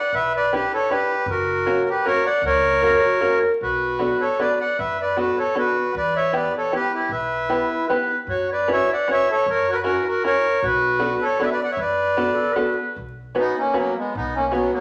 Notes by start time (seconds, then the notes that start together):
Already playing: D5 F#5
0.13 B1 B4 E5
0.36 B4 D5
0.53 D4 E4 G4 B4
0.73 A4 C#5
0.90 D4 E4 G4 B4
1.26 F#1 A#4
1.30 F#4
1.66 A#3 C#4 F#4 A#4
1.89 G4 B4
2.05 A#3 C#4 F#4 A#4 C#5
2.25 D5 F#5
2.42 C#2 A#4
2.46 C#5
2.82 A#3 C#4 F#4 A#4
3.02 F#4
3.21 A#3 C#4 F#4 A#4
3.61 B1 F#4 B4
3.99 B3 D4 F#4 A4
4.20 A4 C#5
4.39 B3 D4 F#4 A4 B4 D5
4.60 D5 F#5
4.79 F#2 B4 E5
5.02 B4 D5
5.17 B3 D4 F#4 A4 B4
5.38 A4 C#5
5.55 B3 D4 F#4 A4 B4
5.95 E2 B4 D5
6.16 C#5 E5
6.33 B3 E4 G4 B4 D5
6.57 A4 C#5
6.72 B3 E4 G4 B4
6.94 E4 G4
7.09 B1 B4 E5
7.49 B3 E4 G4 B4
7.88 B3 E4 G4 B4
8.27 F#2 F#4 C#5
8.52 B4 D5
8.68 C#4 E4 F#4 B4
8.72 C#5 E5
8.92 D5 F#5
9.08 C#4 E4 F#4 B4 C#5
9.13 E5
9.31 A4 C#5
9.46 F#2
9.50 A#4 C#5
9.69 F#4 A#4
9.74 B4
9.82 C#4 E4 F#4 A#4
10.02 B4
10.06 F#4 A#4
10.24 C#4 E4 F#4 A#4 C#5
10.62 B1 F#4 B4
10.99 B3 D4 F#4 A4
11.21 A4 C#5
11.39 B3 D4 F#4 A4 B4 D5
11.45 E5
11.51 B4 D5
11.62 D5 F#5
11.71 C#5 E5
11.77 F#2 B4
11.82 D5
12.17 B3 D4 F#4 A4
12.35 A4
12.53 B3 D4 F#4 A4 B4
12.96 B1
13.35 B3 C#4 F#4 B4
13.40 D#4
13.58 A#3 C#4
13.74 F#3 A#3 B3 C#4 F#4 B4
13.98 G#3 B3
14.15 B1 B3 D#4
14.35 A#3 C#4
14.52 F#3 B3 C#4 F#4 B4
14.73 F#3 A#3